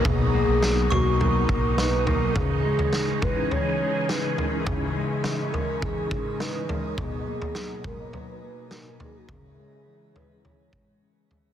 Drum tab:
SD |----o-------o---|----o-------o---|----o-------o---|----o-------o---|
FT |o-----o-o-----o-|o--o--o-o-----o-|o-----o-o-----o-|o--o--o-o-----o-|
BD |o---------o-----|o-----o---------|o-------o-o-----|o-----o---------|

SD |----------------|
FT |o-----o-o-----o-|
BD |o---------o-----|